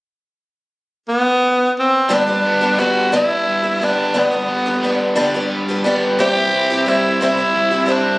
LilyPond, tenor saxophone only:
\new Staff \with { instrumentName = "Tenor saxophone" } { \time 6/8 \key g \major \tempo 4. = 59 r4. b4 c'8 | d'4 fis'8 e'4 d'8 | b4. r4. | g'4 e'8 e'4 d'8 | }